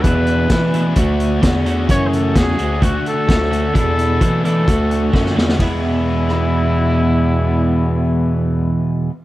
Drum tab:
RD |----------------|----------------|----------------|x---------------|
HH |x-x-x-x-x-x-x-x-|x-x-x-x-x-x-x-x-|x-x-x-x-x-x-----|----------------|
SD |----o-------o---|----o-------o---|------------oooo|------r---------|
BD |o---o---o---o---|o---o---o---o---|o---o---o---o---|o---------------|

RD |----------------|
HH |----------------|
SD |----------------|
BD |----------------|